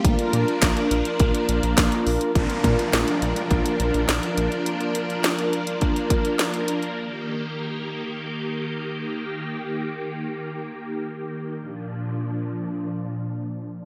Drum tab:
HH |xxxxxxxxxxxxxxox|xxxxxxxxxxxxxxxx|xxxxxxxxxxxxxxxx|----------------|
CP |----x-------x---|----------------|----------------|----------------|
SD |----o-------o---|----o-------o---|----o-------o---|----------------|
BD |o---o---o---o---|o-o-----o-------|--------o-o-----|----------------|

HH |----------------|----------------|
CP |----------------|----------------|
SD |----------------|----------------|
BD |----------------|----------------|